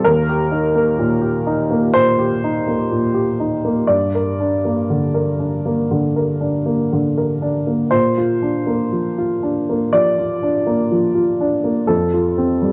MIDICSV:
0, 0, Header, 1, 2, 480
1, 0, Start_track
1, 0, Key_signature, -2, "major"
1, 0, Tempo, 946372
1, 30, Time_signature, 4, 2, 24, 8
1, 991, Tempo, 977199
1, 1951, Tempo, 1005025
1, 4831, Tempo, 975610
1, 6202, End_track
2, 0, Start_track
2, 0, Title_t, "Upright piano"
2, 0, Program_c, 0, 0
2, 0, Control_c, 0, 64, 127
2, 23, Note_on_c, 0, 70, 74
2, 28, Note_on_c, 0, 39, 49
2, 40, Control_c, 0, 64, 0
2, 116, Control_c, 0, 64, 127
2, 148, Note_on_c, 0, 67, 43
2, 261, Note_on_c, 0, 63, 36
2, 340, Note_off_c, 0, 67, 0
2, 382, Note_on_c, 0, 58, 38
2, 456, Note_off_c, 0, 63, 0
2, 501, Note_on_c, 0, 46, 39
2, 576, Note_off_c, 0, 58, 0
2, 615, Note_on_c, 0, 67, 37
2, 696, Note_off_c, 0, 46, 0
2, 742, Note_on_c, 0, 63, 39
2, 814, Note_off_c, 0, 67, 0
2, 865, Note_on_c, 0, 58, 36
2, 939, Note_off_c, 0, 63, 0
2, 969, Note_off_c, 0, 39, 0
2, 982, Note_on_c, 0, 72, 80
2, 986, Note_off_c, 0, 70, 0
2, 986, Note_on_c, 0, 46, 38
2, 1059, Note_off_c, 0, 58, 0
2, 1106, Note_on_c, 0, 67, 36
2, 1178, Note_off_c, 0, 46, 0
2, 1229, Note_on_c, 0, 63, 39
2, 1298, Note_off_c, 0, 67, 0
2, 1346, Note_on_c, 0, 58, 33
2, 1420, Note_off_c, 0, 63, 0
2, 1462, Note_on_c, 0, 46, 33
2, 1538, Note_off_c, 0, 58, 0
2, 1575, Note_on_c, 0, 67, 36
2, 1656, Note_off_c, 0, 46, 0
2, 1701, Note_on_c, 0, 63, 34
2, 1774, Note_off_c, 0, 67, 0
2, 1823, Note_on_c, 0, 58, 31
2, 1898, Note_off_c, 0, 63, 0
2, 1934, Note_on_c, 0, 74, 63
2, 1940, Note_on_c, 0, 43, 38
2, 1946, Note_off_c, 0, 72, 0
2, 1947, Note_off_c, 0, 58, 0
2, 1959, Control_c, 0, 64, 0
2, 2032, Control_c, 0, 64, 127
2, 2066, Note_on_c, 0, 70, 36
2, 2186, Note_on_c, 0, 62, 33
2, 2257, Note_off_c, 0, 70, 0
2, 2305, Note_on_c, 0, 58, 32
2, 2377, Note_off_c, 0, 62, 0
2, 2425, Note_on_c, 0, 50, 31
2, 2496, Note_off_c, 0, 58, 0
2, 2541, Note_on_c, 0, 70, 31
2, 2616, Note_off_c, 0, 50, 0
2, 2661, Note_on_c, 0, 62, 30
2, 2734, Note_off_c, 0, 70, 0
2, 2785, Note_on_c, 0, 58, 30
2, 2855, Note_off_c, 0, 62, 0
2, 2880, Note_off_c, 0, 43, 0
2, 2907, Note_on_c, 0, 50, 32
2, 2978, Note_off_c, 0, 58, 0
2, 3027, Note_on_c, 0, 70, 32
2, 3099, Note_off_c, 0, 50, 0
2, 3143, Note_on_c, 0, 62, 30
2, 3221, Note_off_c, 0, 70, 0
2, 3264, Note_on_c, 0, 58, 29
2, 3340, Note_off_c, 0, 62, 0
2, 3392, Note_on_c, 0, 50, 30
2, 3461, Note_off_c, 0, 58, 0
2, 3511, Note_on_c, 0, 70, 32
2, 3586, Note_off_c, 0, 50, 0
2, 3625, Note_off_c, 0, 74, 0
2, 3627, Note_on_c, 0, 62, 29
2, 3706, Note_off_c, 0, 70, 0
2, 3747, Note_on_c, 0, 58, 29
2, 3824, Note_off_c, 0, 62, 0
2, 3861, Note_on_c, 0, 72, 62
2, 3866, Note_on_c, 0, 46, 37
2, 3872, Note_off_c, 0, 58, 0
2, 3884, Control_c, 0, 64, 0
2, 3958, Control_c, 0, 64, 127
2, 3990, Note_on_c, 0, 65, 34
2, 4107, Note_on_c, 0, 62, 30
2, 4185, Note_off_c, 0, 65, 0
2, 4225, Note_on_c, 0, 58, 34
2, 4303, Note_off_c, 0, 62, 0
2, 4346, Note_on_c, 0, 53, 29
2, 4422, Note_off_c, 0, 58, 0
2, 4470, Note_on_c, 0, 65, 32
2, 4542, Note_off_c, 0, 53, 0
2, 4588, Note_on_c, 0, 62, 30
2, 4664, Note_off_c, 0, 65, 0
2, 4714, Note_on_c, 0, 58, 30
2, 4781, Note_off_c, 0, 62, 0
2, 4808, Note_off_c, 0, 46, 0
2, 4824, Note_off_c, 0, 72, 0
2, 4826, Note_on_c, 0, 74, 69
2, 4830, Note_on_c, 0, 53, 34
2, 4904, Note_off_c, 0, 58, 0
2, 4951, Note_on_c, 0, 65, 32
2, 5023, Note_off_c, 0, 53, 0
2, 5071, Note_on_c, 0, 62, 33
2, 5142, Note_off_c, 0, 65, 0
2, 5189, Note_on_c, 0, 58, 32
2, 5261, Note_off_c, 0, 62, 0
2, 5310, Note_on_c, 0, 53, 32
2, 5380, Note_off_c, 0, 58, 0
2, 5426, Note_on_c, 0, 65, 33
2, 5501, Note_off_c, 0, 53, 0
2, 5552, Note_on_c, 0, 62, 33
2, 5619, Note_off_c, 0, 65, 0
2, 5667, Note_on_c, 0, 58, 30
2, 5743, Note_off_c, 0, 62, 0
2, 5782, Note_on_c, 0, 69, 58
2, 5787, Note_off_c, 0, 74, 0
2, 5787, Note_on_c, 0, 41, 39
2, 5789, Note_off_c, 0, 58, 0
2, 5799, Control_c, 0, 64, 0
2, 5876, Control_c, 0, 64, 127
2, 5912, Note_on_c, 0, 65, 35
2, 6031, Note_on_c, 0, 60, 32
2, 6105, Note_off_c, 0, 65, 0
2, 6149, Note_on_c, 0, 55, 33
2, 6202, Note_off_c, 0, 41, 0
2, 6202, Note_off_c, 0, 55, 0
2, 6202, Note_off_c, 0, 60, 0
2, 6202, Note_off_c, 0, 69, 0
2, 6202, End_track
0, 0, End_of_file